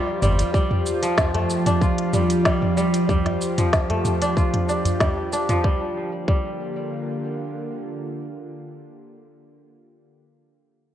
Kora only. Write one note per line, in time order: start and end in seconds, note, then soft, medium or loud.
0.00 0.81 F3 medium
0.00 0.21 G3 loud
0.00 0.79 A3 medium
0.00 0.79 D4 medium
0.00 0.78 F4 medium
0.22 0.53 G3 medium
0.54 2.12 G3 loud
1.02 3.36 F3 medium
1.34 3.34 A3 medium
1.67 3.35 D4 medium
1.82 3.33 F4 medium
2.13 2.44 G3 medium
2.45 2.76 G3 medium
2.77 3.08 G3 medium
3.09 4.99 G3 medium
3.58 5.48 F3 medium
3.90 5.90 A3 medium
4.22 4.68 D4 medium
4.37 5.88 F4 medium
4.69 5.32 D4 medium
5.01 5.63 G3 medium
5.33 7.01 D4 medium
5.49 5.69 F3 medium
5.64 6.28 G3 medium
6.28 8.42 G3 medium